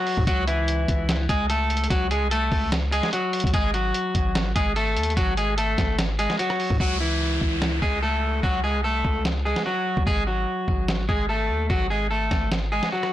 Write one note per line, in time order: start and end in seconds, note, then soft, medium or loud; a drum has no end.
0.00 0.25 F#3 medium
0.00 0.25 F#4 medium
0.07 open hi-hat medium
0.17 0.27 G#2 loud
0.17 kick loud
0.27 0.86 C#2 loud
0.27 0.44 F#3 medium
0.27 0.43 F#4 loud
0.27 kick loud
0.27 closed hi-hat medium
0.47 1.26 E3 medium
0.47 1.25 E4 medium
0.47 closed hi-hat medium
0.68 closed hi-hat medium
0.88 1.28 C#2 loud
0.88 kick medium
0.88 closed hi-hat medium
1.09 snare loud
1.09 closed hi-hat medium
1.29 1.88 C#2 loud
1.29 1.46 G#3 medium
1.29 1.45 G#4 medium
1.29 kick loud
1.29 closed hi-hat medium
1.50 1.88 A3 medium
1.50 1.88 A4 medium
1.50 closed hi-hat medium
1.70 closed hi-hat medium
1.77 closed hi-hat medium
1.84 closed hi-hat medium
1.90 2.23 C#2 loud
1.90 2.07 F#3 medium
1.90 2.06 F#4 medium
1.90 kick loud
1.90 closed hi-hat medium
2.11 2.27 G#3 medium
2.11 2.27 G#4 medium
2.11 closed hi-hat medium
2.22 2.50 C2 loud
2.31 2.70 A3 medium
2.31 2.70 A4 medium
2.31 closed hi-hat medium
2.52 3.01 C#2 loud
2.52 kick medium
2.52 open hi-hat medium
2.72 snare loud
2.72 closed hi-hat medium
2.92 3.09 G#3 medium
2.92 3.08 G#4 medium
2.92 closed hi-hat medium
3.03 snare medium
3.13 3.52 F#3 medium
3.13 3.51 F#4 medium
3.13 closed hi-hat medium
3.33 closed hi-hat medium
3.33 open hi-hat medium
3.40 3.53 C#2 loud
3.40 kick loud
3.40 closed hi-hat medium
3.47 closed hi-hat medium
3.54 3.93 G#1 loud
3.54 3.70 G#3 medium
3.54 3.70 G#4 loud
3.54 kick loud
3.54 closed hi-hat medium
3.74 4.52 F#3 medium
3.74 4.52 F#4 medium
3.74 closed hi-hat medium
3.94 closed hi-hat medium
4.15 4.54 G#1 loud
4.15 kick medium
4.15 closed hi-hat medium
4.35 snare loud
4.35 closed hi-hat medium
4.56 4.98 G#1 loud
4.56 4.72 G#3 medium
4.56 4.72 G#4 medium
4.56 kick loud
4.56 closed hi-hat medium
4.76 5.15 A3 medium
4.76 5.14 A4 medium
4.76 closed hi-hat medium
4.96 5.16 D#2 loud
4.96 closed hi-hat medium
5.03 closed hi-hat medium
5.10 closed hi-hat medium
5.17 5.76 G#1 loud
5.17 5.33 F#3 medium
5.17 5.33 F#4 loud
5.17 kick loud
5.17 closed hi-hat medium
5.37 5.54 G#3 medium
5.37 5.53 G#4 medium
5.37 closed hi-hat medium
5.58 5.96 A3 medium
5.58 5.96 A4 medium
5.58 closed hi-hat medium
5.78 6.28 G#1 loud
5.78 kick medium
5.78 snare medium
5.78 closed hi-hat medium
5.99 snare loud
5.99 closed hi-hat medium
6.19 6.35 G#3 medium
6.19 6.35 G#4 medium
6.19 closed hi-hat medium
6.30 snare medium
6.39 6.78 F#3 medium
6.39 6.78 F#4 medium
6.39 closed hi-hat medium
6.50 cross-stick medium
6.60 open hi-hat medium
6.70 6.80 G#2 loud
6.70 kick loud
6.80 7.39 C#2 loud
6.80 6.97 F#3 medium
6.80 6.96 F#4 loud
6.80 kick loud
6.80 downlifter medium
7.01 7.79 E3 medium
7.01 7.78 E4 medium
7.41 7.81 C#2 loud
7.41 kick medium
7.62 snare loud
7.82 8.41 C#2 loud
7.82 7.99 G#3 medium
7.82 7.98 G#4 medium
7.82 kick loud
8.03 8.41 A3 medium
8.03 8.41 A4 medium
8.43 8.76 C#2 loud
8.43 8.60 F#3 medium
8.43 8.59 F#4 medium
8.43 kick loud
8.64 8.80 G#3 medium
8.64 8.80 G#4 medium
8.75 9.03 C2 loud
8.84 9.23 A3 medium
8.84 9.23 A4 medium
9.05 9.54 C#2 loud
9.05 kick medium
9.25 snare loud
9.45 9.62 G#3 medium
9.45 9.61 G#4 medium
9.56 snare medium
9.66 10.05 F#3 medium
9.66 10.04 F#4 medium
9.97 10.06 C#2 loud
9.97 kick loud
10.07 10.46 G#1 loud
10.07 10.23 G#3 medium
10.07 10.23 G#4 loud
10.07 kick loud
10.27 11.05 F#3 medium
10.27 11.05 F#4 medium
10.68 11.07 G#1 loud
10.68 kick medium
10.88 snare loud
11.09 11.51 G#1 loud
11.09 11.25 G#3 medium
11.09 11.25 G#4 medium
11.09 kick loud
11.29 11.68 A3 medium
11.29 11.67 A4 medium
11.49 11.69 D#2 loud
11.70 12.29 G#1 loud
11.70 11.86 F#3 medium
11.70 11.86 F#4 loud
11.70 kick loud
11.90 12.07 G#3 medium
11.90 12.06 G#4 medium
12.11 12.49 A3 medium
12.11 12.49 A4 medium
12.31 12.81 G#1 loud
12.31 kick medium
12.31 snare medium
12.52 snare loud
12.72 12.88 G#3 medium
12.72 12.88 G#4 medium
12.83 snare medium
12.92 13.13 F#3 medium
12.92 13.13 F#4 medium
13.03 cross-stick medium